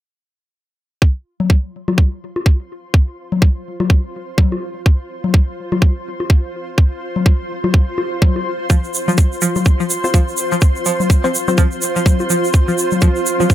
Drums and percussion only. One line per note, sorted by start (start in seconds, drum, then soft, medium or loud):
1.02 kick loud
1.40 low conga medium
1.50 kick loud
1.88 low bongo medium
1.88 low conga medium
1.98 kick loud
2.36 low bongo soft
2.46 kick loud
2.94 kick loud
3.32 low conga medium
3.42 kick loud
3.80 low bongo medium
3.80 low conga medium
3.90 kick loud
4.38 kick loud
4.38 low conga medium
4.52 low bongo medium
4.86 kick loud
5.24 low conga medium
5.34 kick loud
5.72 low bongo medium
5.72 low conga medium
5.82 kick loud
6.20 low bongo medium
6.30 kick loud
6.78 kick loud
7.16 low conga medium
7.26 kick loud
7.64 low bongo medium
7.64 low conga medium
7.74 kick loud
7.98 low bongo medium
8.22 kick loud
8.22 low conga medium
8.36 low bongo medium
8.70 kick loud
8.70 shaker soft
8.84 shaker soft
8.94 shaker medium
9.08 low conga medium
9.08 shaker soft
9.18 kick loud
9.18 shaker soft
9.32 shaker soft
9.42 shaker medium
9.56 low bongo medium
9.56 low conga medium
9.56 shaker soft
9.65 kick loud
9.65 shaker soft
9.80 shaker soft
9.90 shaker medium
10.04 low bongo medium
10.04 shaker soft
10.14 kick loud
10.14 shaker medium
10.28 shaker soft
10.37 shaker medium
10.52 shaker soft
10.61 kick loud
10.61 shaker soft
10.76 shaker soft
10.86 shaker medium
11.00 low conga medium
11.00 shaker soft
11.10 kick loud
11.10 shaker soft
11.24 shaker soft
11.35 shaker medium
11.48 low bongo medium
11.48 low conga medium
11.48 shaker soft
11.58 kick loud
11.58 shaker soft
11.72 shaker soft
11.82 shaker medium
11.96 shaker soft
12.06 kick loud
12.06 low conga medium
12.06 shaker soft
12.20 low bongo medium
12.20 shaker soft
12.30 shaker medium
12.44 shaker soft
12.53 kick loud
12.53 shaker soft
12.68 shaker soft
12.78 shaker medium
12.91 low conga medium
12.91 shaker soft
13.01 kick loud
13.01 shaker soft
13.16 shaker soft
13.26 shaker medium
13.40 low bongo soft
13.40 low conga medium
13.40 shaker soft
13.50 kick loud
13.50 shaker soft